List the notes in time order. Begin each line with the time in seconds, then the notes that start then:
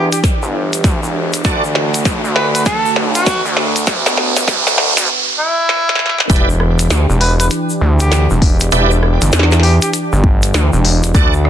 Already playing: E3 D4 G4, riser
0.12 G4, closed hi-hat, shaker
0.24 kick, snare, closed hi-hat, shaker
0.43 G1, shaker
0.73 closed hi-hat, shaker
0.84 D2, kick, snare, closed hi-hat, shaker
1.03 E1, shaker
1.33 closed hi-hat, shaker
1.44 D2 D3 A3 D4 F#4 A4 D5, kick, snare, closed hi-hat, shaker
1.64 shaker
1.75 snare
1.94 closed hi-hat, shaker
2.05 B1, kick, snare, closed hi-hat, shaker
2.24 D2, shaker
2.35 B4, snare
2.54 B4, closed hi-hat, shaker
2.65 A4, kick, snare, closed hi-hat, shaker
2.86 shaker
2.96 B1, snare
3.15 F#4, closed hi-hat, shaker
3.26 kick, snare, closed hi-hat, shaker
3.45 D2, shaker
3.57 snare
3.76 closed hi-hat, shaker
3.87 D2 B3, kick, snare, closed hi-hat, shaker
4.06 snare, shaker
4.17 snare
4.37 F#1, snare, closed hi-hat, shaker
4.48 D2, kick, snare, closed hi-hat, shaker
4.67 snare, shaker
4.78 snare
4.97 D2, snare, closed hi-hat, shaker
5.39 E4
5.69 snare
5.89 snare
5.95 snare
5.99 snare
6.06 snare
6.09 snare
6.18 snare
6.20 snare
6.29 E1 E3 D4 E4 G4 B4 D5, kick, closed hi-hat, shaker
6.36 closed hi-hat
6.50 shaker
6.60 cross-stick
6.79 closed hi-hat, shaker
6.90 D2, snare, closed hi-hat, shaker
7.10 E1, shaker
7.21 B4, open hi-hat
7.40 B4, closed hi-hat, shaker
7.50 closed hi-hat, shaker
7.70 shaker
7.81 D2
8.00 G4, closed hi-hat, shaker
8.12 snare, closed hi-hat, shaker
8.30 E1, shaker
8.42 kick, open hi-hat
8.60 closed hi-hat, shaker
8.71 E1 E4 G4 B4 D5, closed hi-hat, shaker
8.91 shaker
9.03 cross-stick
9.22 G1, closed hi-hat, shaker
9.32 E2, snare, closed hi-hat, shaker
9.39 snare
9.43 snare
9.51 snare, shaker
9.60 G4, snare, open hi-hat
9.82 G4, closed hi-hat, shaker
9.94 closed hi-hat, shaker
10.13 G1, shaker
10.24 kick
10.42 closed hi-hat, shaker
10.54 D2, snare, closed hi-hat, shaker
10.73 E1, shaker
10.85 open hi-hat
11.04 closed hi-hat, shaker
11.15 D2 D3 A3 D4 F#4 A4 D5, kick, closed hi-hat, shaker
11.33 shaker
11.45 cross-stick